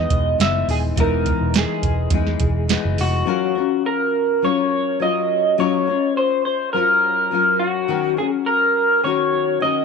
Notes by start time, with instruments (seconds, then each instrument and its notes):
Already playing: nylon-string guitar E3 G#3 B3 D#4, clean electric guitar D#5
0.10 picked electric bass E1, kick, closed hi-hat
0.39 picked electric bass F#1, nylon-string guitar E3 G#3 B3 D#4, clean electric guitar E5, snare, closed hi-hat
0.68 picked electric bass D#1, clean electric guitar G#4, open hi-hat
0.96 picked electric bass E1, nylon-string guitar E3 G#3 B3, kick, closed hi-hat
1.00 nylon-string guitar D#4, clean electric guitar A#4
1.26 kick, closed hi-hat
1.41 picked electric bass E1
1.54 clean electric guitar G#4, snare, closed hi-hat
1.83 picked electric bass E1, kick, closed hi-hat
2.10 picked electric bass E2, nylon-string guitar E3 G#3 B3, kick, closed hi-hat
2.15 nylon-string guitar D#4
2.27 snare
2.40 picked electric bass E1, kick, closed hi-hat
2.68 nylon-string guitar E3 G#3 B3 D#4, snare, closed hi-hat
2.85 picked electric bass F#1
2.98 picked electric bass F1, clean electric guitar F#4, open hi-hat
3.26 nylon-string guitar F#3 C#4 F4 A#4
3.55 nylon-string guitar C#4 F4 A#4
3.86 clean electric guitar A#4
4.42 nylon-string guitar F#3 C#4 F4 A#4, clean electric guitar C#5
5.00 nylon-string guitar F#3 C#4 F4 A#4, clean electric guitar D#5
5.58 nylon-string guitar F#3 C#4 F4 A#4, clean electric guitar C#5
5.87 nylon-string guitar C#4 F4 A#4
6.17 clean electric guitar C5
6.45 clean electric guitar C5
6.73 nylon-string guitar F#3 C#4 F4 A#4, clean electric guitar A#4
7.31 nylon-string guitar F#3 C#4 F4 A#4
7.59 clean electric guitar F#4
7.88 nylon-string guitar D#3 C#4 F#4 A#4
8.17 nylon-string guitar C#4 F#4 A#4, clean electric guitar G#4
8.46 clean electric guitar A#4
9.04 nylon-string guitar D#3 C#4 F#4 A#4, clean electric guitar C#5
9.60 nylon-string guitar D#3 C#4 F#4, clean electric guitar D#5
9.64 nylon-string guitar A#4